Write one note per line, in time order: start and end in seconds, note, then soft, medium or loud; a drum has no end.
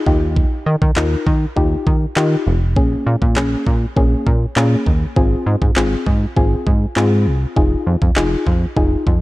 0.00 downlifter medium
0.06 0.45 D#2 loud
0.06 0.78 D#4 medium
0.06 0.79 F4 medium
0.06 0.79 G4 loud
0.06 kick medium
0.36 kick loud
0.66 0.76 D#3 loud
0.82 0.91 D#3 loud
0.82 kick medium
0.96 1.16 D#2 loud
0.96 1.33 D#4 medium
0.96 1.33 F4 medium
0.96 1.33 A#4 medium
0.96 snare medium
0.96 clap loud
1.27 1.46 D#3 loud
1.27 kick medium
1.56 1.76 D#2 loud
1.56 1.93 D#4 medium
1.56 1.93 F4 medium
1.56 1.93 G4 loud
1.56 kick medium
1.87 2.06 D#3 medium
1.87 kick medium
2.16 2.36 D#3 loud
2.16 2.53 D#4 medium
2.16 2.53 F4 medium
2.16 2.53 G4 loud
2.16 snare loud
2.16 clap loud
2.47 2.78 F1 medium
2.76 2.96 A#1 loud
2.76 3.13 A#3 medium
2.76 3.13 C#4 medium
2.76 3.13 G#4 loud
2.76 kick loud
3.07 3.16 A#2 loud
3.22 3.38 A#2 loud
3.22 kick medium
3.36 3.56 A#1 medium
3.36 3.73 A#3 medium
3.36 3.73 C#4 medium
3.36 3.73 G#4 loud
3.36 snare medium
3.36 clap loud
3.67 3.86 A#2 loud
3.67 kick medium
3.96 4.16 A#1 loud
3.96 4.33 A#3 loud
3.96 4.33 C#4 medium
3.96 4.33 G#4 loud
3.96 kick loud
4.27 4.46 A#2 loud
4.27 kick medium
4.56 4.76 A#2 loud
4.56 4.93 A#3 medium
4.56 4.93 C#4 medium
4.56 4.93 G#4 loud
4.56 snare loud
4.56 clap loud
4.86 5.06 D#2 medium
4.86 kick medium
5.16 5.36 G#1 loud
5.16 5.53 C4 loud
5.16 5.53 F4 medium
5.16 5.53 G#4 loud
5.16 kick loud
5.46 5.56 G#2 loud
5.62 5.71 G#2 loud
5.62 kick medium
5.76 5.96 G#1 medium
5.76 6.13 C4 medium
5.76 6.13 F4 medium
5.76 6.13 G#4 loud
5.76 snare medium
5.76 clap loud
6.07 6.26 G#2 loud
6.07 kick medium
6.36 6.56 G#1 loud
6.36 6.73 C4 medium
6.36 6.73 F4 medium
6.36 6.73 G#4 loud
6.36 kick medium
6.67 6.86 G#2 loud
6.67 kick medium
6.96 7.28 G#2 loud
6.96 7.33 C4 medium
6.96 7.33 F4 medium
6.96 7.33 G#4 loud
6.96 snare medium
6.96 clap loud
7.27 7.46 C2 medium
7.56 7.76 F1 loud
7.56 7.93 D#4 medium
7.56 7.93 F4 medium
7.56 7.93 G#4 loud
7.56 kick loud
7.87 7.96 F2 medium
8.02 8.11 F2 loud
8.02 kick medium
8.16 8.36 F1 medium
8.16 8.53 D#4 medium
8.16 8.53 F4 medium
8.16 8.53 G#4 loud
8.16 snare medium
8.16 clap loud
8.47 8.66 F2 loud
8.47 kick medium
8.76 8.96 F1 loud
8.76 9.13 D#4 loud
8.76 9.13 F4 medium
8.76 9.13 G#4 loud
8.76 kick medium
9.07 9.21 F2 loud
9.07 kick medium